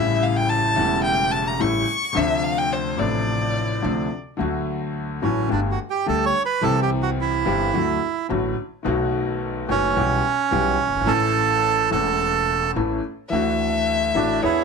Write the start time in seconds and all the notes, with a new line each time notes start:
Already playing: A1 A2 C#3 G3 A3 E4 E5
0.23 F5
0.37 G5
0.50 A5
0.74 E1 E2 C#3 G3 A3
0.79 E4
1.04 G5
1.32 A5
1.47 A#5
1.60 A1 A2 C#3 G3 A3 E4 C#6
2.13 D2 C3 D3 F3 A3
2.17 D4 E5
2.44 F5
2.58 G5
2.73 C5
2.97 A1 A2 C3 F3 A3 D4 D5
3.82 D2 C3 D3 F3 A3 D4
4.37 D2 D3 F#3 A3 F#4
5.22 A1 A2 D3 F#3 A3 C#4 F#4
5.49 G1 G2 D3 G3 A3 D4 G4
5.71 F#4
5.90 G4
6.06 D2 D3 G3 A3 G4 A4
6.26 C#5
6.46 B4
6.61 C2 C3 E3 G3 C4 G4 A4
6.82 G4
7.03 F#4
7.21 E4
7.45 G1 G2 E3 G3 C4 G4
7.74 D2 D3 F#3 A3 F#4
8.29 A1 A2 D3 F#3 A3 F#4
8.83 B1 B2 D#3 A3 B3
8.87 F#4
9.68 F#1 F#2 D#3 A3 B3 C#4 F#4
9.96 B1 B2 E3 G3 B3 G4
10.51 B1 B2 E3 G3 B3 G4
10.87 F#1
10.94 G1
11.00 G#1
11.05 A1 A2 E3 A3 C#4 A4
11.09 A1 A4
11.90 E1 E2 E3 A3 C#4 A4
11.94 A4
12.76 A1 A2 E3 A3 C#4 A4
13.30 D2 D3 E3 A3 D4 E5
13.34 F#4
14.15 A1 A2 E3 A3 D4 F#4
14.42 E2 E3 B3 D4 E4 G#4 C#5